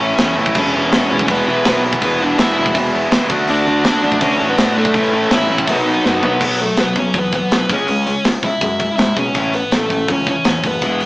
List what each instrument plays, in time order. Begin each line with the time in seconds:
Already playing: picked electric bass A1, lead electric guitar C#4 C#5
0.00 overdriven electric guitar A2 E3 A3 C#4 E4, distorted electric guitar A2 E3 A3
0.18 picked electric bass E2, overdriven electric guitar A2 E3 A3 C#4 E4, distorted electric guitar A2 E3 A3, snare, open hi-hat
0.37 picked electric bass A1, overdriven electric guitar A2 E3 A3 C#4 E4, distorted electric guitar A2 E3 A3
0.46 kick
0.55 picked electric bass E1, distorted electric guitar E2 B2 E3, overdriven electric guitar E3 G#3 B3 E4, kick, crash
0.59 lead electric guitar C#4 C#5
0.74 picked electric bass E1, distorted electric guitar E2 B2 E3, overdriven electric guitar E3 G#3 B3 E4
0.91 picked electric bass E1, distorted electric guitar E2 B2 E3, overdriven electric guitar E3 G#3 B3 E4, snare, open hi-hat
1.10 picked electric bass E1, distorted electric guitar E2 B2 E3, overdriven electric guitar E3 G#3 B3 E4
1.19 kick
1.28 picked electric bass E1, distorted electric guitar E2 B2 E3, overdriven electric guitar E3 G#3 B3 E4, lead electric guitar B3 B4, kick, open hi-hat
1.47 picked electric bass B1, distorted electric guitar E2 B2 E3, overdriven electric guitar E3 G#3 B3 E4
1.65 picked electric bass B1, distorted electric guitar E2 B2 E3, overdriven electric guitar E3 G#3 B3 E4, snare, open hi-hat
1.84 distorted electric guitar E2 B2 E3, overdriven electric guitar E3 G#3 B3 E4
1.93 kick
2.02 picked electric bass E1, distorted electric guitar E2 B2 E3, overdriven electric guitar E3 G#3 B3 E4, lead electric guitar B3 B4, kick, open hi-hat
2.20 distorted electric guitar E2 B2 E3, overdriven electric guitar E3 G#3 B3 E4, lead electric guitar D4 D5
2.38 picked electric bass E1, distorted electric guitar E2 B2 E3, overdriven electric guitar E3 G#3 B3 E4, lead electric guitar E4 E5, snare, open hi-hat
2.57 picked electric bass E1, distorted electric guitar E2 B2 E3, overdriven electric guitar E3 G#3 B3 E4
2.66 kick
2.75 picked electric bass E1, distorted electric guitar E2 B2 E3, overdriven electric guitar E3 G#3 B3 E4, kick, open hi-hat
2.93 distorted electric guitar E2 B2 E3, overdriven electric guitar E3 G#3 B3 E4
3.11 picked electric bass C#2, distorted electric guitar E2 B2 E3, overdriven electric guitar E3 G#3 B3 E4, snare, open hi-hat
3.29 picked electric bass D2, distorted electric guitar D3 A3 D4, overdriven electric guitar D3 A3 D4 F#4, kick
3.48 picked electric bass D2, distorted electric guitar D3 A3 D4, overdriven electric guitar D3 A3 D4 F#4, lead electric guitar D4 D5, open hi-hat
3.66 picked electric bass D2, overdriven electric guitar D3 A3 D4 F#4, distorted electric guitar D3 A3 D4
3.84 picked electric bass D2, overdriven electric guitar D3 A3 D4 F#4, distorted electric guitar D3 A3 D4, snare, open hi-hat
4.03 picked electric bass D2, distorted electric guitar D3 A3 D4, overdriven electric guitar D3 A3 D4 F#4
4.12 kick
4.21 picked electric bass D2, overdriven electric guitar D3 A3 D4 F#4, distorted electric guitar D3 A3 D4, lead electric guitar C#4 C#5, kick, open hi-hat
4.39 picked electric bass A1, overdriven electric guitar D3 A3 D4 F#4, distorted electric guitar D3 A3 D4
4.50 lead electric guitar B3 B4
4.57 picked electric bass A2, overdriven electric guitar D3 A3 D4 F#4, distorted electric guitar D3 A3 D4, snare, open hi-hat
4.75 overdriven electric guitar D3 A3 D4 F#4, distorted electric guitar D3 A3 D4, lead electric guitar A3 A4
4.85 kick
4.94 picked electric bass A1, overdriven electric guitar A2 E3 A3 C#4 E4, distorted electric guitar A2 E3 A3, kick, open hi-hat
5.12 overdriven electric guitar A2 E3 A3 C#4 E4, distorted electric guitar A2 E3 A3
5.30 picked electric bass A1, distorted electric guitar A2 E3 A3, overdriven electric guitar A2 E3 A3 C#4 E4, lead electric guitar E4 E5, snare, open hi-hat
5.49 picked electric bass A1, distorted electric guitar A2 E3 A3, overdriven electric guitar A2 E3 A3 C#4 E4
5.58 kick
5.67 picked electric bass B1, distorted electric guitar B2 F#3 B3, overdriven electric guitar B2 D#3 F#3 B3 D#4, lead electric guitar D#4 D#5, kick, open hi-hat
5.85 overdriven electric guitar B2 D#3 F#3 B3 D#4, distorted electric guitar B2 F#3 B3
6.04 picked electric bass F#2, overdriven electric guitar B2 D#3 F#3 B3 D#4, distorted electric guitar B2 F#3 B3, lead electric guitar B3 B4, snare
6.22 picked electric bass B1, distorted electric guitar B2 F#3 B3, overdriven electric guitar B2 D#3 F#3 B3 D#4, lead electric guitar B3 B4, floor tom
6.41 picked electric bass B1, distorted electric guitar B2 F#3 B3, kick, crash
6.59 distorted electric guitar B2 F#3, lead electric guitar A3 A4, open hi-hat
6.77 picked electric bass B1, distorted electric guitar B2 F#3, lead electric guitar B3 B4, snare, open hi-hat
6.96 picked electric bass B1, distorted electric guitar B2 F#3, lead electric guitar C#4 C#5, kick, open hi-hat
7.14 picked electric bass E2, distorted electric guitar B2 F#3, kick, open hi-hat
7.18 lead electric guitar B3 B4
7.32 distorted electric guitar B2 F#3, lead electric guitar B3, kick, open hi-hat
7.36 lead electric guitar B4
7.51 picked electric bass C2, distorted electric guitar B2 F#3, snare, open hi-hat
7.70 picked electric bass C#2, distorted electric guitar C#3 G#3 C#4, lead electric guitar C#4, kick, open hi-hat
7.74 lead electric guitar C#5
7.88 picked electric bass C#2, distorted electric guitar C#3 G#3, open hi-hat
8.06 distorted electric guitar C#3 G#3, open hi-hat
8.24 picked electric bass C#2, distorted electric guitar C#3 G#3, snare, open hi-hat
8.43 picked electric bass C#2, distorted electric guitar C#3 G#3, lead electric guitar E4 E5, kick, open hi-hat
8.61 picked electric bass F#2, distorted electric guitar C#3 G#3, kick, open hi-hat
8.79 distorted electric guitar C#3 G#3, kick, open hi-hat
8.97 picked electric bass G#2, distorted electric guitar C#3 G#3, lead electric guitar E4 E5, snare, open hi-hat
9.16 picked electric bass B1, distorted electric guitar C#3 G#3, lead electric guitar C#4 C#5, kick, open hi-hat
9.35 picked electric bass A1, distorted electric guitar A2 E3 A3, kick, open hi-hat
9.53 distorted electric guitar A2 E3, lead electric guitar B3 B4, open hi-hat
9.72 picked electric bass A1, distorted electric guitar A2 E3, lead electric guitar A3, snare, open hi-hat
9.76 lead electric guitar A4
9.90 picked electric bass A1, distorted electric guitar A2 E3, kick, open hi-hat
10.08 picked electric bass C#2, distorted electric guitar A2 E3, lead electric guitar C#4 C#5, kick, open hi-hat
10.26 distorted electric guitar A2 E3, lead electric guitar C#4, kick, open hi-hat
10.31 lead electric guitar C#5
10.44 picked electric bass E2, distorted electric guitar A2 E3, snare, open hi-hat
10.64 picked electric bass F#1, distorted electric guitar A2 E3, lead electric guitar B3 B4, kick, open hi-hat
10.81 picked electric bass E1, distorted electric guitar E2 B2 E3, kick, open hi-hat
11.00 distorted electric guitar E2 B2, open hi-hat